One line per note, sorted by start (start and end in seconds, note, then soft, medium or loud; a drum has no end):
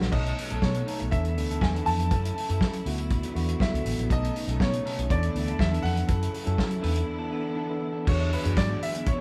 0.00 0.10 A#1 medium
0.00 0.15 E3 medium
0.00 0.15 D4 medium
0.00 0.15 F#4 medium
0.00 0.15 A4 medium
0.00 0.15 B4 medium
0.00 0.14 E5 medium
0.00 0.15 F#5 medium
0.00 muted clean electric guitar stroke soft
0.00 snare medium
0.12 0.31 B1 medium
0.12 0.42 B2 medium
0.12 1.11 C#3 medium
0.12 1.11 F#3 medium
0.12 0.42 A3 medium
0.12 2.83 A3 medium
0.12 1.11 B3 medium
0.12 0.36 C#4 medium
0.12 0.42 D#4 medium
0.12 1.11 D#4 medium
0.12 0.36 D#4 medium
0.12 0.36 A4 loud
0.12 0.42 C#5 medium
0.12 0.64 D#5 medium
0.12 kick loud
0.12 crash medium
0.26 closed hi-hat soft
0.38 muted clean electric guitar stroke soft
0.38 open hi-hat medium
0.50 0.60 B1 medium
0.50 0.88 B2 medium
0.50 0.88 A3 medium
0.50 0.65 C#4 medium
0.50 0.89 D#4 medium
0.50 0.64 D#4 soft
0.50 0.64 A4 medium
0.50 0.89 A4 medium
0.50 closed hi-hat soft
0.62 0.80 B2 medium
0.62 1.14 C#5 medium
0.62 kick medium
0.62 snare loud
0.74 muted clean electric guitar stroke soft
0.74 closed hi-hat soft
0.86 1.05 C#4 medium
0.86 1.00 D#4 medium
0.86 0.99 A4 medium
0.86 open hi-hat medium
0.99 1.10 B1 medium
0.99 1.11 B2 medium
0.99 1.12 A3 medium
0.99 1.12 D#4 medium
0.99 1.12 C#5 medium
0.99 muted clean electric guitar stroke soft
0.99 closed hi-hat soft
1.11 1.38 E2 loud
1.11 2.10 D3 medium
1.11 1.32 E3 medium
1.11 2.10 E3 medium
1.11 1.32 B3 medium
1.11 2.10 B3 medium
1.11 1.29 D4 medium
1.11 1.32 D4 medium
1.11 1.24 E4 medium
1.11 4.07 E4 medium
1.11 1.23 A4 loud
1.11 1.33 A4 medium
1.11 1.63 E5 medium
1.11 kick loud
1.11 closed hi-hat medium
1.25 muted clean electric guitar stroke soft
1.25 closed hi-hat soft
1.37 1.61 D2 medium
1.37 1.66 E3 medium
1.37 1.66 B3 medium
1.37 1.66 D4 medium
1.37 1.67 A4 medium
1.37 muted clean electric guitar stroke soft
1.37 open hi-hat medium
1.51 1.60 D4 soft
1.51 1.60 E4 medium
1.51 1.61 A4 medium
1.51 closed hi-hat soft
1.61 1.80 E2 medium
1.61 1.67 G#5 medium
1.61 muted clean electric guitar stroke soft
1.61 kick loud
1.61 snare loud
1.75 2.03 E3 medium
1.75 2.04 B3 medium
1.75 2.04 D4 medium
1.75 1.85 D4 medium
1.75 1.86 E4 medium
1.75 1.86 A4 medium
1.75 2.04 A4 medium
1.75 closed hi-hat soft
1.86 2.11 F2 medium
1.86 2.01 D4 medium
1.86 2.00 E4 medium
1.86 1.99 A4 medium
1.86 2.57 A5 loud
1.86 open hi-hat medium
2.00 muted clean electric guitar stroke soft
2.00 closed hi-hat soft
2.11 2.29 F#2 medium
2.11 2.85 C#3 medium
2.11 2.85 E3 medium
2.11 2.40 F#3 medium
2.11 5.06 F#3 medium
2.11 2.34 C#4 medium
2.11 2.40 C#4 medium
2.11 2.41 E4 medium
2.11 2.35 E4 medium
2.11 2.35 A4 medium
2.11 2.41 A4 medium
2.11 kick loud
2.11 closed hi-hat medium
2.25 closed hi-hat medium
2.36 muted clean electric guitar stroke soft
2.36 open hi-hat medium
2.49 2.58 F#2 medium
2.49 2.86 F#3 medium
2.49 2.86 C#4 medium
2.49 2.63 C#4 soft
2.49 2.85 E4 medium
2.49 2.63 E4 medium
2.49 2.62 A4 medium
2.49 2.87 A4 loud
2.49 closed hi-hat soft
2.61 2.79 F#3 loud
2.61 kick loud
2.61 snare loud
2.73 muted clean electric guitar stroke soft
2.73 closed hi-hat soft
2.85 3.22 D2 loud
2.85 3.26 D3 medium
2.85 4.08 D3 medium
2.85 3.04 F#3 medium
2.85 8.02 A3 medium
2.85 3.26 B3 medium
2.85 6.05 B3 medium
2.85 3.00 B3 medium
2.85 3.26 E4 medium
2.85 3.27 F#4 loud
2.85 3.00 F#4 medium
2.85 open hi-hat medium
2.98 muted clean electric guitar stroke soft
2.98 closed hi-hat soft
3.10 muted clean electric guitar stroke soft
3.10 kick loud
3.10 closed hi-hat medium
3.23 3.35 F#3 medium
3.23 3.35 B3 medium
3.23 3.36 E4 loud
3.23 closed hi-hat soft
3.34 3.54 E2 medium
3.34 3.64 D3 loud
3.34 3.50 F#3 medium
3.34 3.64 B3 medium
3.34 3.49 B3 medium
3.34 3.65 E4 medium
3.34 3.65 F#4 loud
3.34 3.49 F#4 medium
3.34 open hi-hat medium
3.49 muted clean electric guitar stroke soft
3.49 closed hi-hat medium
3.60 3.78 F#3 medium
3.60 3.74 B3 loud
3.60 3.73 E4 loud
3.60 4.07 E5 medium
3.60 kick loud
3.60 snare loud
3.72 3.82 C#2 medium
3.72 4.02 D3 medium
3.72 4.02 B3 medium
3.72 4.02 E4 medium
3.72 4.02 A4 medium
3.72 muted clean electric guitar stroke soft
3.72 closed hi-hat soft
3.85 3.95 A1 medium
3.85 muted clean electric guitar stroke soft
3.85 open hi-hat medium
3.98 4.07 A#1 medium
3.98 4.12 F#3 medium
3.98 4.09 B3 medium
3.98 4.10 E4 medium
3.98 closed hi-hat soft
4.09 4.28 B1 loud
4.09 4.38 B2 medium
4.09 5.08 C#3 medium
4.09 4.39 A3 medium
4.09 4.33 C#4 medium
4.09 4.39 C#4 medium
4.09 5.08 D#4 medium
4.09 4.39 D#4 medium
4.09 4.33 D#4 medium
4.09 4.33 A4 loud
4.09 4.62 D#5 medium
4.09 kick loud
4.09 closed hi-hat medium
4.24 closed hi-hat medium
4.36 muted clean electric guitar stroke soft
4.36 open hi-hat medium
4.47 4.56 B1 loud
4.47 4.85 B2 medium
4.47 4.85 A3 medium
4.47 4.86 C#4 medium
4.47 4.62 C#4 medium
4.47 4.86 D#4 medium
4.47 4.62 D#4 medium
4.47 4.61 A4 medium
4.47 closed hi-hat soft
4.60 4.78 B2 loud
4.60 5.12 C#5 medium
4.60 kick loud
4.60 snare loud
4.73 muted clean electric guitar stroke soft
4.73 closed hi-hat soft
4.85 5.03 C#4 medium
4.85 4.99 D#4 medium
4.85 4.98 A4 loud
4.85 open hi-hat medium
4.97 5.07 B1 medium
4.97 5.09 B2 medium
4.97 5.09 A3 medium
4.97 5.10 C#4 medium
4.97 5.10 F#4 medium
4.97 muted clean electric guitar stroke soft
4.97 closed hi-hat soft
5.08 5.28 E2 loud
5.08 6.07 D3 medium
5.08 6.06 E3 medium
5.08 5.29 E3 medium
5.08 5.30 B3 medium
5.08 5.30 D4 medium
5.08 5.28 D4 medium
5.08 6.07 E4 medium
5.08 5.22 E4 medium
5.08 5.30 A4 medium
5.08 5.21 A4 medium
5.08 5.61 D5 medium
5.08 kick loud
5.08 closed hi-hat medium
5.23 muted clean electric guitar stroke medium
5.23 closed hi-hat soft
5.33 5.53 D2 loud
5.33 5.63 E3 medium
5.33 5.63 B3 medium
5.33 5.63 D4 medium
5.33 5.64 E4 medium
5.33 muted clean electric guitar stroke soft
5.33 open hi-hat medium
5.47 5.59 D4 medium
5.47 5.58 E4 medium
5.47 5.59 A4 medium
5.47 closed hi-hat medium
5.59 5.78 E2 medium
5.59 5.85 E5 medium
5.59 muted clean electric guitar stroke soft
5.59 kick loud
5.59 snare loud
5.72 6.01 E3 medium
5.72 6.01 B3 medium
5.72 5.82 D4 medium
5.72 6.01 D4 medium
5.72 5.82 E4 medium
5.72 5.83 A4 medium
5.72 6.01 A4 medium
5.72 closed hi-hat soft
5.82 6.02 F2 medium
5.82 5.98 D4 medium
5.82 5.96 E4 medium
5.82 5.95 A4 medium
5.82 6.54 F#5 loud
5.82 open hi-hat medium
5.96 muted clean electric guitar stroke soft
5.96 closed hi-hat soft
6.06 6.27 F#2 loud
6.06 6.82 C#3 medium
6.06 8.05 E3 medium
6.06 6.37 F#3 medium
6.06 6.82 F#3 medium
6.06 6.30 C#4 medium
6.06 6.37 C#4 medium
6.06 6.31 E4 medium
6.06 8.05 E4 medium
6.06 6.38 E4 medium
6.06 6.31 A4 medium
6.06 6.38 A4 medium
6.06 kick loud
6.06 closed hi-hat medium
6.23 closed hi-hat medium
6.32 muted clean electric guitar stroke soft
6.32 open hi-hat medium
6.45 6.55 F#2 medium
6.45 6.83 F#3 medium
6.45 6.83 C#4 medium
6.45 6.59 C#4 medium
6.45 6.59 E4 medium
6.45 6.83 E4 medium
6.45 6.59 A4 medium
6.45 6.82 A4 loud
6.45 closed hi-hat soft
6.58 6.76 F#3 loud
6.58 kick medium
6.58 snare loud
6.70 muted clean electric guitar stroke soft
6.70 closed hi-hat soft
6.80 7.02 E2 loud
6.80 8.05 D3 medium
6.80 7.22 E3 medium
6.80 8.04 B3 medium
6.80 7.23 B3 medium
6.80 7.00 D4 loud
6.80 7.23 D4 medium
6.80 6.95 E4 loud
6.80 7.23 A4 loud
6.80 6.95 B4 loud
6.80 open hi-hat medium
6.95 muted clean electric guitar stroke soft
6.95 closed hi-hat medium
7.06 muted clean electric guitar stroke soft
7.18 7.29 D4 medium
7.18 7.30 E4 medium
7.18 7.31 A4 medium
7.30 7.61 E3 medium
7.30 7.61 B3 medium
7.30 7.46 D4 medium
7.30 7.62 D4 medium
7.30 7.43 E4 medium
7.30 7.62 A4 medium
7.30 7.43 B4 medium
7.43 muted clean electric guitar stroke medium
7.55 7.74 D4 medium
7.55 7.67 E4 loud
7.55 7.67 A4 loud
7.68 7.98 E3 medium
7.68 7.99 B3 medium
7.68 7.99 D4 medium
7.68 7.99 A4 loud
7.68 muted clean electric guitar stroke soft
7.79 muted clean electric guitar stroke medium
7.92 8.04 D4 medium
7.92 8.05 E4 medium
7.92 8.07 A4 medium
8.05 8.35 E2 loud
8.05 8.36 E3 medium
8.05 9.21 G#3 medium
8.05 8.24 D4 medium
8.05 8.36 D4 medium
8.05 9.21 E4 medium
8.05 8.18 F#4 medium
8.05 8.36 F#4 medium
8.05 8.17 G#4 medium
8.05 8.33 C#5 medium
8.05 kick loud
8.05 crash loud
8.09 9.21 D3 medium
8.09 9.21 F#3 medium
8.09 9.21 B3 medium
8.19 muted clean electric guitar stroke soft
8.30 8.58 B4 medium
8.30 muted clean electric guitar stroke soft
8.30 open hi-hat medium
8.44 8.54 F#2 medium
8.44 9.12 E3 medium
8.44 8.54 D4 medium
8.44 9.12 D4 medium
8.44 8.55 F#4 medium
8.44 9.12 F#4 medium
8.44 8.55 G#4 medium
8.44 9.12 G#4 medium
8.44 closed hi-hat medium
8.56 8.75 G#2 medium
8.56 8.82 D5 medium
8.56 muted clean electric guitar stroke soft
8.56 kick loud
8.56 snare loud
8.56 closed hi-hat medium
8.68 8.80 D4 medium
8.68 8.80 F#4 medium
8.68 8.81 G#4 medium
8.81 8.95 D4 medium
8.81 8.94 F#4 medium
8.81 8.94 G#4 medium
8.81 9.08 E5 medium
8.81 open hi-hat medium
8.95 muted clean electric guitar stroke soft
8.95 closed hi-hat soft
9.06 9.21 C#5 medium
9.06 muted clean electric guitar stroke soft
9.06 kick loud
9.06 closed hi-hat medium